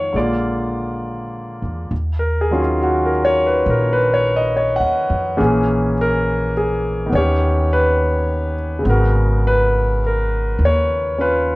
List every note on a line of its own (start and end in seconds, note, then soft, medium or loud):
0.00 0.11 F2 medium
0.00 0.13 D#3 soft
0.00 0.14 G#3 soft
0.00 0.16 B3 soft
0.00 0.17 F4 soft
0.00 0.18 C#5 medium
0.00 0.17 F5 medium
0.13 1.59 A#1 medium
0.13 1.90 D3 soft
0.13 1.91 G#3 soft
0.13 1.92 A#3 soft
0.13 1.60 D5 medium
0.18 1.93 F4 medium
1.62 1.89 E2 medium
1.91 3.62 D#2 medium
2.19 2.49 A#4 medium
2.41 2.59 G#4 medium
2.51 5.40 D#3 soft
2.51 5.40 F#3 soft
2.51 5.36 C#4 soft
2.51 2.60 F4 medium
2.62 2.77 F4 medium
2.83 3.10 F#4 medium
3.05 3.36 A#4 medium
3.24 3.45 C#5 medium
3.46 3.62 B4 medium
3.66 4.78 A#1 medium
3.66 3.97 A#4 medium
3.93 4.23 B4 medium
4.14 4.33 C#5 medium
4.36 4.51 D#5 medium
4.57 4.83 C#5 medium
4.76 5.08 D#2 medium
4.76 4.96 F#5 medium
5.10 5.37 F2 medium
5.37 7.09 A#1 medium
5.37 7.11 E3 medium
5.37 7.12 A#3 soft
5.37 7.12 C#4 medium
5.37 5.41 G#4 medium
5.42 5.95 G#4 medium
6.01 6.53 A#4 medium
6.57 7.10 G#4 medium
7.06 8.82 D#3 soft
7.06 8.84 B3 soft
7.12 8.81 D#2 medium
7.12 8.86 C#4 soft
7.12 7.68 C#5 medium
7.17 8.88 G4 medium
7.73 8.54 B4 medium
8.79 11.56 C#3 soft
8.83 10.54 G#1 medium
8.83 11.56 G#3 soft
8.83 11.56 B3 soft
8.89 11.56 F#4 medium
8.89 9.41 A#4 medium
9.47 9.99 B4 medium
10.06 10.57 A#4 medium
10.59 11.56 D#2 medium
10.65 11.16 C#5 medium
11.18 11.56 C#4 soft
11.18 11.56 F4 soft
11.18 11.56 B4 medium